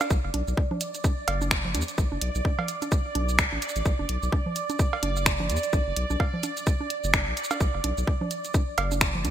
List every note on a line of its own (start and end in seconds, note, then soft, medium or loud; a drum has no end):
0.00 9.31 D5 medium
0.00 closed hi-hat soft
0.00 cowbell medium
0.00 low bongo soft
0.00 shaker soft
0.10 0.19 B1 loud
0.10 kick loud
0.10 shaker soft
0.24 0.30 F#1 loud
0.34 0.43 B1 medium
0.34 closed hi-hat loud
0.34 low bongo soft
0.48 0.54 B1 medium
0.48 shaker soft
0.57 kick loud
0.71 low bongo soft
0.71 low conga medium
0.81 closed hi-hat loud
0.81 shaker medium
0.95 closed hi-hat soft
0.95 shaker soft
1.04 kick loud
1.04 low bongo soft
1.04 shaker medium
1.28 1.76 F#1 medium
1.28 closed hi-hat loud
1.28 cowbell medium
1.41 low bongo soft
1.41 shaker soft
1.51 finger snap loud
1.51 kick loud
1.51 shaker medium
1.65 low conga medium
1.75 1.83 E2 loud
1.75 closed hi-hat loud
1.75 low bongo soft
1.75 shaker soft
1.81 shaker medium
1.88 closed hi-hat soft
1.88 shaker soft
1.98 2.07 B1 loud
1.98 kick loud
1.98 shaker soft
2.12 2.18 F#1 loud
2.12 low bongo soft
2.21 2.30 B1 medium
2.21 closed hi-hat loud
2.35 2.41 B1 medium
2.35 shaker soft
2.45 kick loud
2.45 low bongo soft
2.59 cowbell medium
2.59 low conga medium
2.68 closed hi-hat medium
2.68 shaker medium
2.82 closed hi-hat soft
2.82 low bongo soft
2.82 shaker soft
2.92 kick loud
2.92 shaker medium
3.15 3.44 B1 medium
3.15 closed hi-hat medium
3.15 low bongo soft
3.29 shaker soft
3.39 finger snap loud
3.39 kick loud
3.39 shaker soft
3.52 3.58 A1 medium
3.52 low bongo soft
3.62 closed hi-hat medium
3.62 shaker soft
3.69 shaker soft
3.76 3.82 A1 medium
3.76 closed hi-hat soft
3.76 shaker soft
3.85 3.94 B1 loud
3.85 kick loud
3.85 shaker medium
3.99 4.05 F#1 loud
3.99 low bongo soft
4.09 4.18 B1 medium
4.09 closed hi-hat loud
4.23 4.29 B1 loud
4.23 shaker soft
4.32 kick loud
4.32 low bongo soft
4.46 low conga medium
4.56 closed hi-hat medium
4.56 shaker soft
4.70 closed hi-hat soft
4.70 low bongo soft
4.70 shaker soft
4.79 kick loud
4.79 shaker medium
4.93 cowbell medium
5.03 5.51 F#1 medium
5.03 closed hi-hat medium
5.03 low bongo soft
5.16 shaker soft
5.26 finger snap loud
5.26 kick loud
5.26 shaker medium
5.40 low bongo soft
5.40 low conga medium
5.50 5.58 E2 loud
5.50 closed hi-hat medium
5.50 shaker soft
5.57 shaker soft
5.63 closed hi-hat soft
5.63 shaker soft
5.73 5.82 B1 loud
5.73 kick loud
5.73 low bongo soft
5.73 shaker soft
5.87 5.93 F#1 loud
5.96 6.05 B1 medium
5.96 closed hi-hat medium
6.10 6.16 B1 medium
6.10 low bongo soft
6.10 shaker soft
6.20 kick loud
6.20 cowbell medium
6.34 low conga medium
6.43 closed hi-hat medium
6.43 low bongo soft
6.43 shaker medium
6.57 closed hi-hat soft
6.57 shaker soft
6.67 kick loud
6.67 shaker medium
6.81 low bongo soft
6.90 closed hi-hat medium
7.04 7.29 F#1 medium
7.04 shaker soft
7.14 finger snap loud
7.14 kick loud
7.14 low bongo soft
7.14 shaker medium
7.27 7.33 B1 loud
7.37 closed hi-hat medium
7.37 shaker soft
7.44 shaker medium
7.51 closed hi-hat soft
7.51 cowbell medium
7.51 low bongo soft
7.51 shaker soft
7.60 7.69 B1 loud
7.60 kick loud
7.60 shaker medium
7.74 7.80 F#1 loud
7.84 7.93 B1 medium
7.84 closed hi-hat loud
7.84 low bongo soft
7.98 8.04 B1 medium
7.98 shaker soft
8.07 kick loud
8.21 low bongo soft
8.21 low conga medium
8.31 closed hi-hat medium
8.31 shaker medium
8.45 closed hi-hat soft
8.45 shaker soft
8.54 kick loud
8.54 low bongo soft
8.54 shaker medium
8.78 9.26 F#1 medium
8.78 closed hi-hat medium
8.78 cowbell medium
8.91 low bongo soft
8.91 shaker soft
9.01 finger snap loud
9.01 kick loud
9.01 shaker medium
9.15 low conga medium
9.25 9.31 E2 loud
9.25 closed hi-hat medium
9.25 low bongo soft
9.25 shaker soft